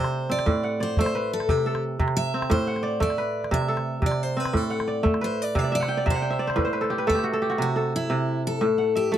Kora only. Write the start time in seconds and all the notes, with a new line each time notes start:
Already playing: C3 A3 A4
0.29 C4
0.46 A2
0.63 F#5
0.80 D5
0.99 A3
1.15 B4
1.49 C3
1.66 A4
1.99 C3
2.34 C4
2.50 A2
2.67 F#5
2.83 D5
3.00 A3
3.18 B4
3.51 C3
3.68 A4
4.02 C3
4.37 C4
4.53 A2
4.70 F#5
4.88 D5
5.03 A3
5.21 B4
5.55 C3
5.64 D5
5.72 E5
5.80 F#5
5.88 G5
5.97 D5
6.06 C3 E5
6.14 F#5
6.22 G5
6.30 E5
6.39 D5
6.47 C5
6.56 A2 B4
6.65 C5
6.73 B4
6.81 A4
6.90 G4
6.98 B4
7.07 A3 A4
7.15 G4
7.24 F#4
7.33 A4
7.42 G4
7.50 F#4
7.58 C3
7.76 A4
8.10 C3
8.61 A2
8.78 F#5
8.95 E5
9.12 A3 A4